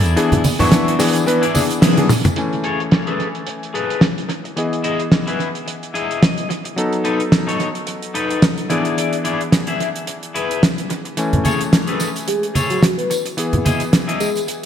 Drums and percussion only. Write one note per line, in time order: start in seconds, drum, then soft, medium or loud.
0.04 closed hi-hat medium
0.04 tambourine soft
0.17 closed hi-hat medium
0.17 tambourine soft
0.32 closed hi-hat medium
0.32 high conga medium
0.32 low conga medium
0.44 open hi-hat loud
0.44 tambourine medium
0.44 high conga medium
0.60 open hi-hat medium
0.60 tambourine soft
0.60 low conga medium
0.72 snare loud
0.72 closed hi-hat medium
0.72 tambourine soft
0.88 closed hi-hat medium
1.00 snare medium
1.00 open hi-hat loud
1.00 tambourine loud
1.15 closed hi-hat medium
1.15 tambourine medium
1.27 closed hi-hat medium
1.27 tambourine soft
1.43 closed hi-hat medium
1.55 open hi-hat loud
1.55 tambourine loud
1.55 high conga medium
1.71 closed hi-hat medium
1.71 tambourine medium
1.82 snare loud
1.82 closed hi-hat loud
1.82 tambourine soft
1.97 closed hi-hat medium
1.97 high tom soft
2.09 open hi-hat medium
2.09 mid tom medium
2.09 tambourine medium
2.25 closed hi-hat medium
2.25 mid tom medium
2.25 tambourine medium
2.25 high conga medium
2.36 closed hi-hat medium
2.53 closed hi-hat soft
2.64 closed hi-hat medium
2.80 closed hi-hat medium
2.92 snare loud
2.92 closed hi-hat medium
3.07 closed hi-hat soft
3.20 closed hi-hat soft
3.35 closed hi-hat soft
3.47 closed hi-hat medium
3.63 closed hi-hat soft
3.75 closed hi-hat medium
3.90 closed hi-hat medium
4.01 snare loud
4.01 closed hi-hat medium
4.18 closed hi-hat soft
4.29 closed hi-hat medium
4.45 closed hi-hat soft
4.57 closed hi-hat medium
4.73 closed hi-hat soft
4.84 closed hi-hat medium
5.00 closed hi-hat soft
5.12 snare loud
5.12 closed hi-hat medium
5.28 closed hi-hat soft
5.40 closed hi-hat soft
5.55 closed hi-hat soft
5.68 closed hi-hat medium
5.83 closed hi-hat soft
5.95 closed hi-hat medium
6.11 closed hi-hat medium
6.23 snare loud
6.23 closed hi-hat medium
6.38 closed hi-hat soft
6.51 closed hi-hat medium
6.65 closed hi-hat medium
6.78 closed hi-hat medium
6.93 closed hi-hat soft
7.05 closed hi-hat medium
7.20 closed hi-hat soft
7.32 snare loud
7.32 closed hi-hat medium
7.49 closed hi-hat medium
7.60 closed hi-hat soft
7.75 closed hi-hat soft
7.87 closed hi-hat medium
8.02 closed hi-hat medium
8.15 closed hi-hat medium
8.30 closed hi-hat soft
8.42 snare loud
8.42 closed hi-hat medium
8.58 closed hi-hat soft
8.70 closed hi-hat medium
8.85 closed hi-hat soft
8.98 closed hi-hat medium
9.13 closed hi-hat soft
9.25 closed hi-hat medium
9.41 closed hi-hat soft
9.52 snare medium
9.52 closed hi-hat medium
9.67 closed hi-hat soft
9.80 closed hi-hat soft
9.96 closed hi-hat soft
10.07 closed hi-hat medium
10.23 closed hi-hat soft
10.36 closed hi-hat medium
10.51 closed hi-hat medium
10.63 snare loud
10.63 closed hi-hat medium
10.78 closed hi-hat soft
10.90 closed hi-hat medium
11.05 closed hi-hat soft
11.17 closed hi-hat medium
11.17 tambourine soft
11.33 closed hi-hat soft
11.33 high conga medium
11.33 low conga medium
11.45 closed hi-hat medium
11.45 tambourine medium
11.45 high conga medium
11.61 closed hi-hat soft
11.61 tambourine soft
11.73 snare loud
11.73 closed hi-hat medium
11.73 tambourine soft
11.87 closed hi-hat soft
12.00 closed hi-hat soft
12.00 tambourine medium
12.16 closed hi-hat soft
12.16 tambourine soft
12.28 closed hi-hat medium
12.28 tambourine soft
12.43 closed hi-hat soft
12.55 closed hi-hat medium
12.55 tambourine medium
12.55 high conga medium
12.70 closed hi-hat soft
12.70 tambourine soft
12.83 snare loud
12.83 closed hi-hat medium
12.83 tambourine soft
12.99 closed hi-hat soft
13.11 closed hi-hat medium
13.11 tambourine medium
13.26 closed hi-hat medium
13.26 tambourine soft
13.38 closed hi-hat medium
13.38 tambourine soft
13.53 closed hi-hat soft
13.53 high conga soft
13.53 low conga medium
13.66 closed hi-hat medium
13.66 tambourine medium
13.66 high conga medium
13.80 closed hi-hat soft
13.80 tambourine soft
13.93 snare loud
13.93 closed hi-hat medium
13.93 tambourine soft
14.09 closed hi-hat soft
14.20 closed hi-hat soft
14.20 tambourine medium
14.35 closed hi-hat soft
14.35 tambourine soft
14.48 closed hi-hat medium
14.48 tambourine soft